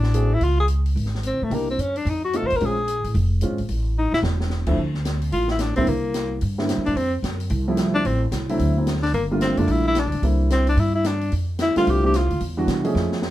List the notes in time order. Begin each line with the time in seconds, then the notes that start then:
Already playing: A1 D4
0.03 snare
0.14 A3 C4 F#4 G#4, closed hi-hat
0.34 E4
0.41 C#2 F4, open hi-hat
0.60 G#4
0.68 closed hi-hat
0.86 open hi-hat
0.95 G#1, open hi-hat
1.06 snare
1.15 snare
1.23 C4, closed hi-hat
1.33 C2
1.42 A#1 A3
1.50 C2 A#3 D4 D#4 G4, open hi-hat
1.54 A#3
1.70 C4
1.78 F#2 C#4, closed hi-hat
1.96 D4, open hi-hat
2.05 F2, open hi-hat
2.09 D#4
2.25 F#4
2.33 A3 C4 D#4 F4 A4, closed hi-hat
2.42 D#2
2.47 C5, open hi-hat
2.52 A1
2.56 A#4
2.60 A#1 G#3 C4 C#4 F4, open hi-hat
2.66 G#4
2.88 closed hi-hat
3.04 A1, open hi-hat
3.14 F1, open hi-hat
3.41 G#3 C4 C#4 F4, closed hi-hat
3.50 G#1
3.58 A#1, open hi-hat
3.69 A1, open hi-hat
3.98 D#4
4.12 A#1 E4, snare
4.23 E1, snare
4.41 snare
4.50 snare
4.66 D2 F3 A3 C4 E4, kick, crash
4.78 D2
4.94 snare
5.05 snare, closed hi-hat
5.22 open hi-hat
5.32 A1 F4, open hi-hat
5.48 E4, snare
5.59 D4, snare, closed hi-hat
5.76 B1 D3 G3 A#3 C4 E4, open hi-hat
5.87 C2 A#3, open hi-hat
6.14 snare, closed hi-hat
6.41 G2, open hi-hat
6.58 D3 G3 A#3 C4 E4, snare
6.69 snare, closed hi-hat
6.77 A#2
6.86 G2 D4, open hi-hat
6.95 F2 C4, open hi-hat
7.22 F#2, snare, closed hi-hat
7.40 open hi-hat
7.50 C2, open hi-hat
7.68 F3 G3 A3 C4 E4
7.77 snare, closed hi-hat
7.95 D4
8.05 A1 C4, open hi-hat
8.31 C2, snare, closed hi-hat
8.49 D3 F#3 A3 C4 E4, open hi-hat
8.59 D2, open hi-hat
8.78 D3 F#3 A3 C4 E4
8.87 snare, closed hi-hat
8.96 snare
9.03 D4, snare, open hi-hat
9.14 G1 A#3, open hi-hat
9.31 D3 G3 A3 A#3 F4
9.41 C4, snare, closed hi-hat
9.57 F1 D3 G3 A3 A#3 D4 F4, open hi-hat
9.67 A#1 E4, open hi-hat
9.87 E4
9.95 snare, closed hi-hat
9.99 D4
10.05 D2
10.12 A#1, open hi-hat
10.22 C2 D3 G3 A#3 C4 E4, open hi-hat
10.50 C4, snare, closed hi-hat
10.67 D4, open hi-hat
10.77 G2 E4, open hi-hat
10.95 E4
11.04 D4, snare, closed hi-hat
11.21 open hi-hat
11.32 F2, open hi-hat
11.59 E4, snare, closed hi-hat
11.76 D3 G3 A3 C4 F4, muted upright bass stroke, snare, open hi-hat
11.87 C2 G4, open hi-hat
12.03 D3 G3 A3 C4 D4 G4
12.14 F4, snare, closed hi-hat
12.30 D2, open hi-hat
12.40 E2, open hi-hat
12.57 E3 G3 B3 D4 F#4
12.67 C3, snare, closed hi-hat
12.84 F3 A3 C#4 D#4 G#4, open hi-hat
12.95 F2, snare
13.12 snare
13.22 snare